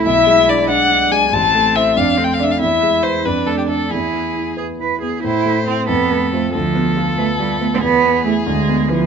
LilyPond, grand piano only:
\new Staff \with { instrumentName = "Grand piano" } { \time 6/8 \key e \phrygian \tempo 4. = 93 b,,8 gis8 d'8 d''8 d'8 gis8 | a,,8 a8 <e' c''>8 f,8 a8 <d' d''>8 | e,8 gis8 <e' b'>8 f,8 a8 <d' d''>8 | e,8 b8 e'8 b'8 e'8 b8 |
a,8 a8 <e' c''>8 f,8 a8 <f' c''>8 | d,8 b8 f'8 b'8 f'8 b8 | e,8 b8 <e' gis'>8 d,8 b8 <e' b'>8 | }